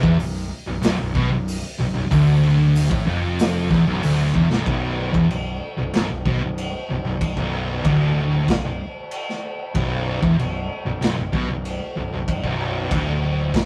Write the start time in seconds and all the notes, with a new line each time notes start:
0.03 E1 E2, kick
0.19 B0 B1, open hi-hat
0.67 B0 B1
0.83 B0 B1, snare, open hi-hat
0.99 B0 B1
1.15 B1 B2, kick
1.31 B0 B1
1.48 open hi-hat
1.79 B0 B1
1.96 B0 B1
2.11 D1 D2, kick, open hi-hat
2.75 open hi-hat
2.91 A1 A2, kick
3.07 F1 F2
3.39 snare, open hi-hat
3.71 E1 E2, kick, snare
3.87 B0 B1
4.03 D1 D2, open hi-hat
4.35 E1 E2, kick
4.51 B0 B1, snare
4.66 B0 B1, kick, crash
5.14 E1 E2, kick
5.30 B0 B1, crash
5.78 B0 B1
5.93 B0 B1, snare, crash
6.10 B0 B1
6.26 B1 B2, kick
6.42 B0 B1
6.58 crash
6.90 B0 B1
7.05 B0 B1
7.21 kick, crash
7.37 B0 B1, kick
7.84 D1 D2, kick, crash
8.48 B0 B1, kick, snare, crash
8.64 B0 B1
9.11 crash
9.29 snare
9.75 B0 B1, kick, crash
10.23 E1 E2, kick
10.38 B0 B1, crash
10.86 B0 B1
11.02 B0 B1, snare, crash
11.17 B0 B1
11.33 B1 B2, kick
11.48 B0 B1
11.65 crash
11.96 B0 B1
12.12 B0 B1
12.28 kick, crash
12.43 B0 B1, kick
12.90 D1 D2, kick, crash
13.54 B0 B1, kick, snare, crash